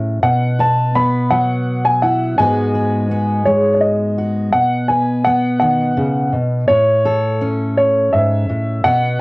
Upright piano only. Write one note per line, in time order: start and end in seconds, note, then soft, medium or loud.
0.23 0.60 F#5 medium
0.60 0.93 A5 medium
0.95 1.32 B5 medium
1.30 1.86 F#5 medium
1.85 2.03 G#5 medium
2.02 2.39 F#5 medium
2.38 3.49 G#5 medium
3.45 3.73 C#5 medium
3.74 3.82 C#5 soft
3.81 4.55 D#5 medium
4.53 4.90 F#5 medium
4.88 5.26 G#5 medium
5.24 5.58 F#5 medium
5.60 6.29 F#5 medium
6.68 7.45 C#5 medium
7.77 8.11 C#5 medium
8.13 8.87 E5 medium
8.84 9.21 F#5 medium